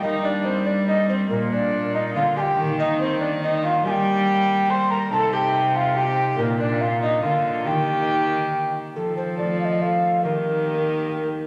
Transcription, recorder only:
0.02 0.24 D#5 loud
0.24 0.47 D5 medium
0.45 0.68 C5 loud
0.67 0.87 D5 medium
0.88 1.09 D#5 loud
1.09 1.15 C5 medium
1.30 1.51 A#4 loud
1.53 1.94 D5 medium
1.94 2.00 D#5 medium
2.16 2.36 F5 loud
2.37 2.60 G5 loud
2.37 2.41 G#5 loud
2.80 3.00 D#5 loud
3.00 3.23 C5 loud
3.21 3.42 D5 loud
3.43 3.64 D#5 loud
3.64 3.85 F5 loud
3.86 3.92 G#5 loud
3.91 4.72 G5 loud
4.70 4.92 C6 loud
4.90 5.12 A#5 loud
5.12 5.33 A5 loud
5.34 5.78 G5 loud
5.76 5.97 F5 loud
5.97 6.38 G5 loud
6.38 6.59 A#4 loud
6.60 6.83 D5 medium
6.81 7.02 F5 loud
7.02 7.23 D#5 loud
7.24 7.66 F5 loud
7.66 8.73 G5 loud
8.96 9.16 A4 medium
9.17 9.38 C5 medium
9.39 9.60 D5 medium
9.60 9.66 F5 medium
9.65 9.83 D#5 medium
9.82 10.24 F5 medium
10.24 11.28 A#4 medium

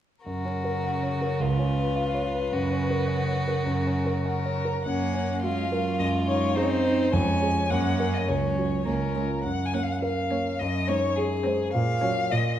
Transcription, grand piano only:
0.26 1.37 F#2 soft
0.45 0.76 C#4 soft
0.64 0.95 A#4 soft
0.84 1.14 F#5 soft
1.03 1.33 C#5 soft
1.22 1.40 A#4 soft
1.40 2.49 C#2 soft
1.59 1.89 C#4 soft
1.78 2.08 B4 soft
1.96 2.26 F5 soft
2.14 2.45 C#5 soft
2.34 2.53 B4 soft
2.52 3.63 F#2 soft
2.71 3.01 C#4 soft
2.90 3.20 A#4 soft
3.08 3.39 F#5 soft
3.28 3.59 C#5 soft
3.48 3.78 A#4 soft
3.66 4.82 F#2 soft
3.86 4.17 C#4 soft
4.06 4.37 A#4 soft
4.26 4.58 F#5 soft
4.46 4.78 C#5 soft
4.65 4.85 A#4 soft
4.86 5.97 F#2 soft
5.14 5.60 C#4 soft
5.43 5.89 F#4 soft
5.72 6.00 A#4 soft
6.00 7.09 F#2 medium
6.29 6.74 D#4 soft
6.57 7.02 G#4 soft
6.85 7.13 D#4 soft
7.13 7.68 F2 medium
7.42 7.68 G#4 soft
7.42 7.68 C#5 soft
7.71 8.26 F#2 medium
8.00 8.25 A#4 soft
8.00 8.25 C#5 soft
8.28 8.85 C#2 soft
8.57 8.84 F#4 soft
8.57 8.84 C#5 soft
8.87 9.44 C#2 soft
9.16 9.42 F4 soft
9.16 9.42 C#5 soft
9.45 10.57 F#2 soft
9.75 10.20 C#4 soft
10.02 10.48 A#4 soft
10.31 10.60 C#5 soft
10.61 11.71 F#2 soft
10.90 11.34 D#4 soft
11.18 11.63 G#4 soft
11.46 11.74 C5 soft
11.75 12.30 A#2 medium
12.03 12.29 F#4 soft
12.03 12.29 C#5 soft
12.32 12.59 A#2 medium

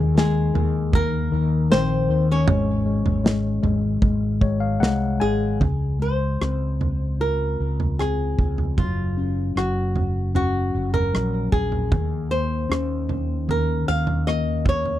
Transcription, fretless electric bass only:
0.00 0.50 D#2 medium
0.55 1.28 D#2 loud
1.32 1.68 D#2 loud
1.71 2.06 A#1 medium
2.09 2.44 D#2 medium
2.47 3.01 G#1 loud
3.06 3.59 G#1 medium
3.63 3.99 G#1 medium
4.02 4.77 G#1 loud
4.80 5.18 C2 medium
5.21 5.58 G#1 medium
5.61 6.37 C#2 medium
6.41 7.56 C#2 medium
7.60 8.35 C#2 medium
8.39 8.79 C#2 medium
8.77 9.52 F#1 medium
9.55 10.70 F#1 medium
10.74 11.11 F#1 medium
11.14 11.50 A#1 medium
11.52 11.89 A#1 medium
11.92 12.66 D#2 medium
12.70 13.84 D#2 medium
13.88 14.99 D#2 medium

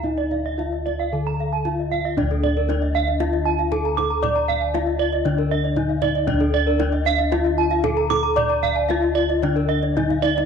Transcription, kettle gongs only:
0.00 1.11 D2 loud
0.00 0.57 D#4 medium
0.58 0.66 D#4 soft
1.13 2.65 D3 medium
1.66 1.74 D#4 soft
2.17 3.68 D4 medium
2.22 5.24 D2 loud
2.69 2.77 D#4 soft
3.72 3.80 D#4 soft
4.23 5.73 D5 medium
4.74 4.82 D#4 medium
5.26 6.76 D3 medium
5.77 5.85 D#4 medium
6.28 7.80 D4 medium
6.33 9.41 D2 loud
7.84 7.92 D#4 medium
8.36 9.92 D5 medium
8.89 8.97 D#4 soft
9.43 10.46 D3 medium
9.96 10.04 D#4 soft

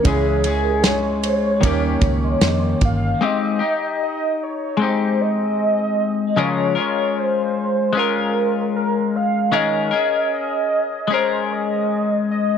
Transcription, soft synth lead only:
0.07 0.85 G#4 loud
0.86 2.79 C#5 loud
2.85 3.26 F5 loud
3.24 4.02 D#5 loud
4.03 4.44 D#5 loud
4.43 4.83 C#5 medium
4.82 5.23 C5 loud
5.21 6.38 D#5 loud
6.39 6.75 C#5 medium
6.79 7.20 C#5 loud
7.19 7.99 C5 loud
7.97 8.75 A#4 loud
8.76 9.17 A#4 loud
9.16 9.56 F5 loud
9.54 10.33 D#5 loud
10.34 11.14 D#5 loud
11.12 11.54 C5 loud
11.52 12.30 D#5 loud
12.31 12.58 D#5 loud

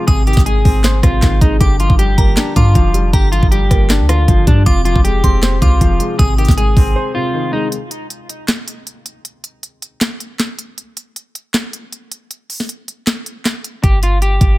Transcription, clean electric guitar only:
0.07 0.22 G#4 medium
0.27 0.42 G4 medium
0.46 1.00 G#4 medium
1.03 1.39 F4 medium
1.41 1.56 D#4 medium
1.60 1.75 G4 medium
1.80 1.94 F4 medium
1.99 2.53 G4 medium
2.56 3.10 F4 medium
3.14 3.28 G4 medium
3.32 3.47 F4 medium
3.51 4.05 G4 medium
4.09 4.45 F4 medium
4.48 4.62 D4 medium
4.66 4.81 F4 medium
4.85 5.00 F4 medium
5.04 5.58 G4 medium
5.62 6.16 F4 medium
6.19 6.33 G#4 medium
6.38 6.53 G4 medium
6.57 7.11 G#4 medium
7.15 7.51 F4 medium
7.53 7.67 D#4 medium
13.84 13.98 G4 medium
14.03 14.18 F4 medium
14.22 14.58 G4 medium

